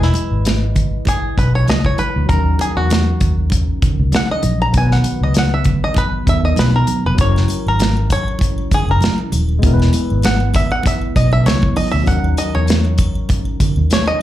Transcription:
Already playing: tine electric piano G#3 E4 B4 D#5
0.02 five-string banjo E4, snare
0.14 closed hi-hat, muted conga
0.31 fingered electric bass G#1
0.45 snare, closed hi-hat, high conga
0.75 kick, closed hi-hat, low conga
1.05 five-string banjo G#4, kick, closed hi-hat, muted conga
1.38 fingered electric bass B1, five-string banjo B4, kick, closed hi-hat
1.55 five-string banjo C#5
1.68 fingered electric bass C#2, five-string banjo D#5, snare, closed hi-hat, high conga
1.85 five-string banjo C#5, kick
1.98 five-string banjo B4, closed hi-hat, high conga
2.16 fingered electric bass D2
2.26 fingered electric bass D#2, tine electric piano F#3 C#4, five-string banjo A#4, kick, closed hi-hat
2.31 tine electric piano D#4 A#4
2.59 five-string banjo G#4, closed hi-hat, muted conga
2.77 fingered electric bass E2, five-string banjo F#4
2.90 snare, closed hi-hat, high conga
3.21 fingered electric bass D#2, kick, closed hi-hat
3.50 kick, closed hi-hat, muted conga
3.82 muted fingered electric bass stroke, kick, closed hi-hat, low conga
4.00 fingered electric bass C#2
4.12 five-string banjo F#5, snare, closed hi-hat, high conga
4.31 five-string banjo D#5
4.43 fingered electric bass A#1, closed hi-hat, high conga
4.62 five-string banjo A#5
4.72 fingered electric bass B1, tine electric piano F#3 B3, kick, closed hi-hat, muted conga
4.77 tine electric piano D#3 B4, five-string banjo G#5
4.91 five-string banjo F#5, snare
5.04 closed hi-hat, muted conga
5.21 fingered electric bass C#2, five-string banjo D#5
5.34 snare, closed hi-hat, high conga
5.38 five-string banjo F#5
5.54 five-string banjo E5
5.64 kick, closed hi-hat, low conga
5.84 five-string banjo D#5
5.94 five-string banjo B4, kick, closed hi-hat, muted conga
6.25 fingered electric bass D#2, tine electric piano F#3 B3 D#4, kick, closed hi-hat
6.29 tine electric piano A#4, five-string banjo E5
6.45 five-string banjo D#5
6.56 fingered electric bass B1, five-string banjo B4, snare, closed hi-hat, high conga
6.76 five-string banjo A#4
6.87 closed hi-hat, high conga
7.05 fingered electric bass F1, five-string banjo B4
7.15 tine electric piano F#3 C#4, kick, closed hi-hat, muted triangle
7.19 fingered electric bass F#1, tine electric piano E4 A#4, five-string banjo C#5
7.36 snare, muted triangle
7.48 closed hi-hat, muted conga, triangle
7.66 fingered electric bass G#1, five-string banjo A#4, muted triangle
7.79 snare, closed hi-hat, high conga, muted triangle
7.97 muted triangle
8.10 five-string banjo C#5, kick, closed hi-hat, triangle
8.28 muted triangle
8.39 kick, closed hi-hat, muted conga, muted triangle
8.58 muted triangle
8.71 five-string banjo G#4, muted fingered electric bass stroke, kick, closed hi-hat, low conga, triangle
8.88 fingered electric bass F#1, five-string banjo A#4, muted triangle
9.01 snare, closed hi-hat, high conga, muted triangle
9.18 muted triangle
9.32 fingered electric bass D#1, closed hi-hat, high conga, triangle
9.49 muted triangle
9.59 tine electric piano G#3 B3, muted triangle
9.63 fingered electric bass E1, tine electric piano E4 A#4, kick, closed hi-hat, muted conga
9.74 tine electric piano B4
9.80 snare, muted triangle
9.93 closed hi-hat, muted conga, triangle
10.10 fingered electric bass G#1, muted triangle
10.22 five-string banjo F#5, snare, closed hi-hat, high conga, muted triangle
10.40 muted triangle
10.54 five-string banjo E5, kick, closed hi-hat, low conga, triangle
10.71 five-string banjo F#5, muted triangle
10.83 five-string banjo E5, kick, closed hi-hat, muted conga, muted triangle
11.02 muted triangle
11.16 fingered electric bass B1, five-string banjo D#5, kick, closed hi-hat, triangle
11.32 five-string banjo E5, muted triangle
11.46 fingered electric bass C#2, five-string banjo C#5, snare, closed hi-hat, high conga, muted triangle
11.62 kick, muted triangle
11.76 five-string banjo D#5, open hi-hat, high conga, triangle
11.91 fingered electric bass D2, five-string banjo E5, muted triangle
12.03 tine electric piano F#3 C#4, muted triangle
12.07 fingered electric bass D#2, tine electric piano D#4 A#4, five-string banjo F#5, kick, closed hi-hat
12.24 muted triangle
12.37 five-string banjo D#5, closed hi-hat, muted conga, triangle
12.55 fingered electric bass E2, five-string banjo C#5, muted triangle
12.67 snare, closed hi-hat, high conga, muted triangle
12.85 muted triangle
12.98 kick, closed hi-hat, triangle
13.15 muted triangle
13.29 kick, closed hi-hat, muted conga, muted triangle
13.45 muted triangle
13.60 muted fingered electric bass stroke, kick, closed hi-hat, low conga, triangle
13.76 fingered electric bass D#2, muted triangle
13.90 five-string banjo C#5, snare, closed hi-hat, high conga, muted triangle
14.06 five-string banjo D#5, muted triangle

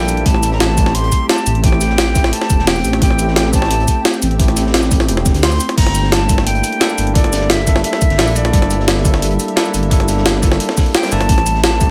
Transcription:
Already playing: detuned saw bass A#1, ambient pad G3 G4 E5, tine electric piano A#3 D4 E4 A4, flute G5
0.09 closed hi-hat, cabasa
0.17 closed hi-hat
0.25 detuned saw bass A1, tine electric piano A3 C4 E4 G4, ambient pad C4 G5, flute A5, kick, closed hi-hat
0.34 snare
0.43 closed hi-hat, cabasa
0.52 flute A#5, snare
0.60 flute A5, snare, closed hi-hat
0.69 snare
0.76 tine electric piano A3 C4 E4 G4, kick, closed hi-hat, cabasa
0.86 snare
0.95 detuned saw bass A1, flute C6, closed hi-hat
1.04 closed hi-hat
1.12 kick, closed hi-hat, cabasa
1.29 flute A5, snare, closed hi-hat
1.38 cabasa
1.46 detuned saw bass A1, closed hi-hat, cabasa
1.55 closed hi-hat
1.62 tine electric piano A3 C4 E4 G4, flute G5, kick, closed hi-hat
1.72 snare
1.80 snare, closed hi-hat, cabasa
1.90 snare
1.98 detuned saw bass A1, snare, closed hi-hat
2.06 snare
2.14 tine electric piano A3 C4 E4 G4, kick, snare, closed hi-hat, cabasa
2.23 snare
2.33 flute A5, closed hi-hat
2.41 snare
2.50 detuned saw bass E1, kick, closed hi-hat, cabasa
2.59 snare
2.67 flute G5, snare, closed hi-hat, open hi-hat
2.76 cabasa
2.85 detuned saw bass A1, closed hi-hat, cabasa
2.93 snare, closed hi-hat
3.00 detuned saw bass A1, tine electric piano A3 C4 E4 G4, flute G5, kick, closed hi-hat
3.10 snare
3.18 closed hi-hat, cabasa
3.28 snare
3.36 flute G5, snare, closed hi-hat
3.45 snare
3.52 tine electric piano A3 C4 E4 G4, flute A5, kick, closed hi-hat, cabasa
3.62 snare
3.71 detuned saw bass A1, closed hi-hat
3.80 closed hi-hat
3.88 kick, closed hi-hat, cabasa
4.05 snare, closed hi-hat
4.14 cabasa
4.22 detuned saw bass A1, closed hi-hat, cabasa
4.31 closed hi-hat
4.38 tine electric piano A3 C4 E4 G4, kick, closed hi-hat
4.48 snare, closed hi-hat
4.56 snare, closed hi-hat, cabasa
4.66 snare
4.74 detuned saw bass A1, snare, closed hi-hat
4.83 snare, cabasa
4.90 tine electric piano A3 C4 E4 G4, kick, closed hi-hat, cabasa
5.00 snare, closed hi-hat
5.08 detuned saw bass E1, closed hi-hat
5.17 snare
5.25 kick, snare, closed hi-hat, cabasa
5.34 detuned saw bass D2, snare, closed hi-hat
5.43 flute C6, snare, closed hi-hat, open hi-hat, cabasa
5.52 snare, cabasa
5.60 closed hi-hat, cabasa
5.69 snare, closed hi-hat
5.76 detuned saw bass G1, ambient pad G3 G4 E5, tine electric piano A3 A#3 D4 E4, flute A#5, kick, closed hi-hat, crash
5.86 snare, closed hi-hat
5.94 closed hi-hat, cabasa
6.04 snare
6.12 flute A5, snare, closed hi-hat
6.21 snare
6.28 tine electric piano A#3 D4 E4 A4, kick, closed hi-hat, cabasa
6.38 snare
6.47 detuned saw bass G1, flute G5, closed hi-hat
6.55 closed hi-hat
6.63 closed hi-hat, cabasa
6.72 closed hi-hat
6.80 tine electric piano A#3 D4 E4 A4, snare, closed hi-hat
6.90 cabasa
6.98 detuned saw bass G1, closed hi-hat, cabasa
7.07 closed hi-hat
7.14 tine electric piano A#3 D4 E4 A4, flute D5, kick, closed hi-hat
7.24 snare, closed hi-hat
7.33 snare, closed hi-hat, cabasa
7.41 snare
7.50 detuned saw bass G1, flute E5, snare, closed hi-hat
7.59 snare
7.66 tine electric piano A#3 D4 E4 A4, kick, snare, closed hi-hat, cabasa
7.75 snare
7.84 flute E5, closed hi-hat
7.92 snare
8.02 kick, closed hi-hat, cabasa
8.10 detuned saw bass G1, snare, closed hi-hat
8.18 detuned saw bass A#1, tine electric piano A#3 D4 E4 A4, snare, closed hi-hat, open hi-hat
8.28 cabasa
8.36 flute D5, closed hi-hat, cabasa
8.45 snare, closed hi-hat
8.52 detuned saw bass G1, tine electric piano A#3 D4 E4 A4, kick, closed hi-hat
8.62 snare, closed hi-hat
8.71 closed hi-hat, cabasa
8.80 snare
8.88 snare, closed hi-hat
8.97 snare
9.04 tine electric piano A#3 D4 E4 A4, kick, closed hi-hat, cabasa
9.14 snare
9.22 detuned saw bass G1, closed hi-hat
9.40 closed hi-hat, cabasa
9.48 closed hi-hat
9.56 tine electric piano A#3 D4 E4 A4, snare, closed hi-hat
9.66 cabasa
9.74 detuned saw bass G1, closed hi-hat, cabasa
9.83 closed hi-hat
9.90 tine electric piano A#3 D4 E4 A4, kick, closed hi-hat
10.00 snare, closed hi-hat
10.08 snare, closed hi-hat, cabasa
10.17 snare
10.25 detuned saw bass G1, snare, closed hi-hat
10.35 snare
10.42 tine electric piano A#3 D4 E4 A4, kick, snare, closed hi-hat, cabasa
10.52 snare
10.60 closed hi-hat
10.69 snare
10.77 kick, snare, closed hi-hat, open hi-hat, cabasa
10.86 closed hi-hat
10.95 flute G5, snare, closed hi-hat
11.03 tine electric piano A#3 D4 E4 C5, snare, open hi-hat, cabasa
11.11 detuned saw bass G1, tine electric piano A#3 D4 E4 A4, flute A5, closed hi-hat, cabasa
11.21 detuned saw bass G1, snare, closed hi-hat
11.28 detuned saw bass A1, tine electric piano A3 E4 G4, ambient pad C4 A4 G5, kick, closed hi-hat
11.38 snare, closed hi-hat
11.46 closed hi-hat, cabasa
11.55 snare
11.64 flute A5, snare, closed hi-hat
11.72 snare
11.80 tine electric piano A3 C4 E4 G4, kick, closed hi-hat, cabasa

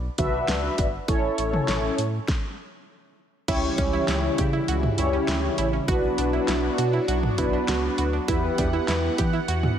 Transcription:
0.18 analog synth bass B1, analog polysynth D4 F#4 B4 E5, kick, closed hi-hat, mid tom
0.48 analog synth bass C#2, snare, closed hi-hat
0.78 analog synth bass G1, kick, closed hi-hat
1.08 analog synth bass A1, analog polysynth C#4 E4 A4 C#5, kick, closed hi-hat
1.38 analog synth bass A1, closed hi-hat
1.53 mid tom
1.68 analog synth bass A1, snare, closed hi-hat
1.98 analog synth bass A2, closed hi-hat
2.28 kick, snare
3.48 analog synth bass C#2, analog synth pad C#3 E3 G3 E4, analog polysynth C#4 E4 G4 C#5, synth arpeggio sound E4, kick, closed hi-hat, crash
3.78 analog synth bass C#2, synth arpeggio sound C#4, kick, closed hi-hat
3.93 synth arpeggio sound E4
4.08 analog synth bass C#2, synth arpeggio sound E4, snare, closed hi-hat
4.38 analog synth bass C#3, synth arpeggio sound G4, kick, closed hi-hat
4.53 synth arpeggio sound E4
4.68 analog synth bass C#2, synth arpeggio sound F#4, closed hi-hat
4.83 mid tom
4.98 analog synth bass C#2, analog polysynth C#4 E4 G4 C#5, synth arpeggio sound E4, closed hi-hat
5.13 synth arpeggio sound C#4
5.28 analog synth bass D2, synth arpeggio sound E4, snare, closed hi-hat
5.58 analog synth bass A1, synth arpeggio sound E4, closed hi-hat
5.73 synth arpeggio sound C#4
5.88 analog synth bass B1, analog synth pad F#3 B3 D4 F#4, analog polysynth B3 D4 F#4 B4, synth arpeggio sound F#4, kick, closed hi-hat
6.18 analog synth bass B1, synth arpeggio sound D4, closed hi-hat
6.33 synth arpeggio sound E4
6.48 analog synth bass B1, synth arpeggio sound E4, snare, closed hi-hat
6.78 analog synth bass B2, synth arpeggio sound F#4, closed hi-hat
6.93 synth arpeggio sound E4
7.08 analog synth bass B1, synth arpeggio sound F#4, closed hi-hat
7.23 mid tom
7.38 analog synth bass B1, analog polysynth B3 D4 F#4 B4, synth arpeggio sound E4, kick, closed hi-hat
7.53 synth arpeggio sound D4
7.68 analog synth bass C#2, synth arpeggio sound F#4, snare, closed hi-hat
7.98 analog synth bass D2, synth arpeggio sound F#4, closed hi-hat
8.13 synth arpeggio sound D4
8.28 analog synth bass E2, analog synth pad E3 B3 F#5, analog polysynth B3 E4 G4 B4, synth arpeggio sound E4, kick, closed hi-hat
8.58 analog synth bass E2, synth arpeggio sound D4, kick, closed hi-hat
8.73 synth arpeggio sound E4
8.88 analog synth bass E2, synth arpeggio sound E4, snare, closed hi-hat
9.18 analog synth bass E3, synth arpeggio sound G4, kick, closed hi-hat
9.33 synth arpeggio sound E4
9.48 analog synth bass E2, synth arpeggio sound F#4, closed hi-hat
9.63 mid tom

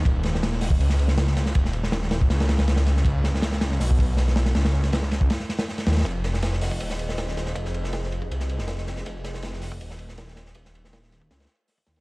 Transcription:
0.05 detuned saw bass D#1, kick, ride
0.23 snare, ride
0.35 snare
0.43 snare, ride
0.52 snare
0.61 snare, open hi-hat
0.70 kick
0.80 detuned saw bass C#2, ride
0.90 snare
0.99 ride
1.08 snare
1.18 snare, ride
1.27 snare
1.37 snare, ride
1.46 snare
1.55 detuned saw bass D#1, kick, ride
1.65 snare
1.73 ride
1.83 snare
1.92 snare, ride
2.02 snare
2.11 snare, ride
2.21 kick
2.30 detuned saw bass C#2, snare, ride
2.40 snare, ride
2.49 snare, ride
2.58 detuned saw bass C#2, snare, ride
2.68 snare, ride
2.76 snare, ride
2.86 snare, ride
2.97 snare
3.05 detuned saw bass C#2, kick, ride
3.24 snare, ride
3.35 snare
3.42 snare, ride
3.52 snare
3.61 snare, ride
3.71 snare
3.80 detuned saw bass B1, snare, open hi-hat
3.91 kick
3.99 kick, ride
4.17 snare, ride
4.28 snare
4.36 snare, ride
4.46 snare, ride
4.55 detuned saw bass C#2, snare, ride
4.65 snare, ride
4.73 snare
4.84 snare, ride
4.93 snare, ride
5.02 snare
5.11 snare, ride
5.21 kick
5.30 snare, ride
5.40 snare
5.49 snare, ride
5.59 snare, ride
5.68 snare
5.78 snare, ride
5.86 detuned saw bass D#2, snare, ride
5.92 snare, ride
5.97 snare, ride
6.00 snare, ride
6.05 detuned saw bass F1, ambient pad F4 G#4 C5 D#5, kick, ride
6.24 snare, ride
6.34 snare
6.42 snare, ride
6.53 snare
6.61 snare, open hi-hat
6.71 kick
6.80 detuned saw bass D#1, ride
6.90 snare
6.99 ride
7.09 snare
7.18 snare, ride
7.28 snare
7.37 snare, ride
7.46 snare
7.55 detuned saw bass F1, kick, ride
7.65 snare
7.74 ride
7.84 snare
7.93 snare, ride
8.03 snare
8.12 ride
8.22 kick
8.30 detuned saw bass C2, ambient pad A#4, ride
8.40 snare
8.49 ride
8.59 detuned saw bass F1, snare
8.68 snare, ride
8.78 snare
8.87 snare, ride
8.97 snare
9.06 detuned saw bass F1, kick, ride
9.24 snare, ride
9.34 snare
9.42 snare, ride
9.53 snare
9.62 snare, open hi-hat
9.72 kick
9.80 detuned saw bass D#1, ride
9.90 snare
9.99 ride
10.09 snare
10.18 snare, ride
10.28 snare
10.36 snare, ride
10.46 snare
10.55 detuned saw bass D#1, ambient pad F#4 A#4 C#5, kick, ride
10.65 snare
10.75 ride
10.85 snare
10.93 snare, ride
11.03 snare
11.12 snare, ride
11.21 kick
11.30 detuned saw bass C#2, snare, ride
11.40 snare, ride
11.44 snare, ride
11.68 snare, open hi-hat
11.78 kick
11.86 detuned saw bass D#2, snare, ride
11.96 snare, ride

